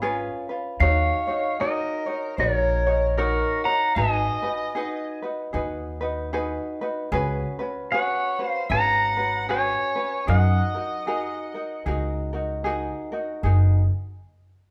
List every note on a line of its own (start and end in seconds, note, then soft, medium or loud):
0.00 0.25 G#1 medium
0.00 0.48 C#4 medium
0.00 0.48 F4 loud
0.00 0.48 G#4 medium
0.00 0.48 B4 loud
0.49 0.81 C#4 soft
0.49 0.81 F4 soft
0.49 0.81 B4 medium
0.80 1.10 D#2 loud
0.80 1.28 D#4 medium
0.80 1.27 F#4 medium
0.80 1.28 A#4 medium
0.80 1.55 C#5 medium
0.80 1.26 C#5 medium
0.80 1.62 F5 medium
1.27 1.60 D#4 soft
1.27 1.60 F#4 medium
1.27 1.59 C#5 medium
1.60 2.07 D#4 medium
1.60 2.06 F#4 medium
1.60 2.34 A#4 medium
1.60 2.06 A#4 medium
1.60 2.05 C#5 medium
1.60 2.39 D#5 medium
2.06 2.38 D#4 soft
2.06 2.38 F#4 soft
2.06 2.38 C#5 medium
2.37 3.41 A#1 medium
2.37 2.86 D#4 medium
2.37 2.86 F#4 medium
2.37 3.13 A#4 medium
2.37 2.85 A#4 medium
2.37 3.20 C#5 medium
2.37 2.85 C#5 medium
2.87 3.17 D#4 medium
2.87 3.17 F#4 medium
2.87 3.17 C#5 medium
3.18 3.65 D#4 medium
3.18 3.65 F#4 medium
3.18 3.61 F#4 medium
3.18 3.64 A#4 medium
3.18 3.66 A#4 medium
3.18 3.64 C#5 medium
3.64 3.96 F#4 medium
3.64 3.97 C#5 medium
3.64 3.94 F#5 medium
3.64 3.97 A#5 loud
3.68 3.96 D#4 soft
3.95 4.27 G#1 loud
3.95 4.43 D#4 medium
3.95 4.42 F#4 medium
3.95 4.43 G#4 medium
3.95 4.41 B4 medium
3.95 5.18 D#5 medium
3.95 5.19 G#5 loud
4.43 4.74 D#4 medium
4.43 4.75 F#4 medium
4.43 4.75 B4 medium
4.75 5.22 D#4 medium
4.75 5.22 F#4 medium
4.75 5.22 G#4 medium
4.75 5.21 B4 medium
5.22 5.52 D#4 soft
5.22 5.53 F#4 medium
5.22 5.53 B4 medium
5.53 6.57 D#2 medium
5.53 6.01 D#4 medium
5.53 6.01 F#4 medium
5.53 6.00 G#4 medium
5.53 5.99 B4 medium
6.01 6.32 D#4 medium
6.01 6.32 F#4 medium
6.01 6.33 B4 medium
6.33 6.80 D#4 medium
6.33 6.80 F#4 medium
6.33 6.80 G#4 medium
6.33 6.80 B4 medium
6.81 7.12 D#4 soft
6.81 7.12 F#4 medium
6.81 7.12 B4 medium
7.12 7.42 C#2 loud
7.12 7.59 C#4 medium
7.12 7.59 F#4 loud
7.12 7.59 G#4 medium
7.12 7.58 B4 loud
7.59 7.92 C#4 medium
7.59 7.92 F#4 medium
7.59 7.91 B4 medium
7.92 8.39 C#4 medium
7.92 8.39 F#4 medium
7.92 8.38 G#4 medium
7.92 8.38 B4 medium
7.92 8.43 C#5 medium
7.92 8.48 F#5 medium
8.39 8.71 C#4 soft
8.39 8.71 F#4 soft
8.39 8.71 B4 medium
8.39 8.66 C5 medium
8.48 8.73 F5 medium
8.70 9.72 G#1 loud
8.70 9.18 C#4 medium
8.70 9.17 F#4 medium
8.70 9.17 G#4 medium
8.70 9.16 B4 medium
8.70 9.45 F#5 medium
8.70 9.46 A#5 loud
9.17 9.48 C#4 soft
9.17 9.49 F#4 medium
9.17 9.49 B4 medium
9.49 9.96 C#4 medium
9.49 9.96 F#4 medium
9.49 9.96 G#4 medium
9.49 9.94 B4 medium
9.49 10.24 C#5 medium
9.49 10.31 G#5 medium
9.96 10.27 C#4 soft
9.96 10.27 F#4 soft
9.96 10.28 B4 medium
10.27 10.58 F#2 loud
10.27 10.74 D#4 medium
10.27 10.75 F#4 medium
10.27 10.74 G#4 medium
10.27 10.73 A#4 medium
10.27 11.81 D#5 medium
10.27 11.82 F#5 medium
10.75 11.06 D#4 soft
10.75 11.06 F#4 medium
10.75 11.07 A#4 medium
11.07 11.54 D#4 medium
11.07 11.54 F#4 medium
11.07 11.54 G#4 medium
11.07 11.53 A#4 medium
11.54 11.85 D#4 soft
11.54 11.86 F#4 medium
11.54 11.85 A#4 medium
11.86 12.88 C#2 medium
11.86 12.33 D#4 medium
11.86 12.33 F#4 medium
11.86 12.32 G#4 medium
11.86 12.32 A#4 medium
12.33 12.64 D#4 medium
12.33 12.65 F#4 medium
12.33 12.64 A#4 medium
12.64 13.12 D#4 medium
12.64 13.12 F#4 loud
12.64 13.11 G#4 medium
12.64 13.11 A#4 loud
13.12 13.43 D#4 medium
13.12 13.44 F#4 medium
13.12 13.43 A#4 medium
13.43 13.87 F#1 medium
13.43 13.81 D#4 medium
13.43 13.82 F#4 medium
13.43 13.81 G#4 medium
13.43 13.82 A#4 medium